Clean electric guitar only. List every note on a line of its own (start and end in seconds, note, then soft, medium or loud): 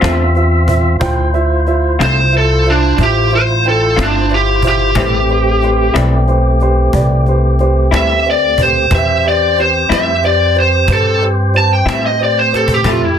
0.01 0.22 D3 medium
0.01 0.22 A3 medium
0.01 0.21 C4 medium
0.01 0.21 F4 medium
1.99 2.20 D3 medium
1.99 2.19 A3 medium
1.99 2.19 C4 medium
1.99 2.19 F4 medium
3.96 4.17 D3 medium
3.96 4.17 A3 medium
3.96 4.17 C4 medium
3.96 4.16 F4 medium
4.95 5.15 A2 medium
4.95 5.15 G3 medium
4.95 5.16 C4 medium
4.95 5.16 E4 medium
5.94 6.15 A2 medium
5.94 6.15 G3 medium
5.94 6.14 C4 medium
5.94 6.14 E4 medium
7.91 8.12 A2 medium
7.91 8.12 G3 medium
7.91 8.12 C4 medium
7.91 8.11 E4 medium
9.89 10.10 A2 medium
9.89 10.09 G3 medium
9.89 10.09 C4 medium
9.89 10.09 E4 medium
11.86 12.06 A2 medium
11.86 12.06 G3 medium
11.86 12.06 C4 medium
11.86 12.06 E4 medium
12.84 13.04 F3 medium
12.84 13.05 A3 medium
12.84 13.05 C4 medium
12.84 13.05 E4 medium